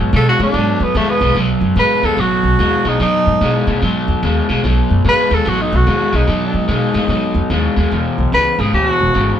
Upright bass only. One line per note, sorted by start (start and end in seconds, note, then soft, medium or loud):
0.13 0.29 B2 loud
0.39 0.48 A2 loud
0.53 0.70 G#2 medium
0.80 0.89 E2 medium
0.95 1.11 D#2 medium
1.21 1.30 B1 medium
1.35 1.51 B1 medium
1.61 1.71 F#2 medium
1.76 1.92 G#2 medium
2.03 2.12 D#2 medium
2.17 2.33 A1 medium
2.43 2.53 B1 medium
2.59 2.75 D#2 medium
2.85 2.94 B1 medium
3.00 3.16 E2 medium
3.27 3.36 G#2 medium
3.41 3.57 B2 medium
3.67 3.76 A2 medium
3.82 3.98 G#2 medium
4.08 4.17 E2 medium
4.23 4.39 D#2 medium
4.49 4.58 B1 medium
4.64 4.80 B1 medium
4.90 4.99 F#2 medium
5.04 5.21 G#2 medium
5.31 5.40 D#2 medium
5.46 5.62 A1 medium
5.72 5.81 B1 medium
5.87 6.03 D#2 medium
6.13 6.22 B1 medium
6.27 6.44 E2 medium
6.54 6.63 G#2 medium
6.68 6.84 B2 medium
6.94 7.03 A2 medium
7.08 7.25 G#2 medium
7.35 7.44 E2 medium
7.50 7.66 D#2 medium
7.77 7.86 D#2 medium
7.92 8.08 E1 medium
8.18 8.27 B1 medium
8.33 8.49 C#2 medium
8.59 8.68 G#1 medium
8.73 8.89 D2 medium
9.00 9.09 E1 medium
9.15 9.31 G#1 medium